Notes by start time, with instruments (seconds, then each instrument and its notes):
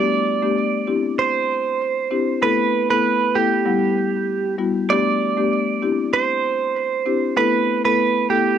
Already playing: marimba A3 B3 D4 G4, clean electric guitar D5
0.42 marimba A3 B3 D4 G4
0.87 marimba C4 D4 E4 G4
1.19 clean electric guitar C5
2.11 marimba C4 D4 E4 G4
2.42 marimba A3 B3 E4 A4, clean electric guitar B4
2.90 marimba A3 B3 E4 A4, clean electric guitar B4
3.34 marimba A3 B3 E4 A4, clean electric guitar G4
3.65 marimba G3 B3 E4 F#5
4.58 marimba G3 B3 E4 F#4
4.89 marimba A3 B3 D4 G4, clean electric guitar D5
5.37 marimba A3 B3 D4 G4
5.82 marimba C4 D4 E4 G4
6.13 clean electric guitar C5
7.06 marimba C4 D4 E4 G4
7.37 marimba A3 B3 E4 A4, clean electric guitar B4
7.85 marimba A3 B3 E4 A4, clean electric guitar B4
8.29 marimba A3 B3 E4 A4, clean electric guitar G4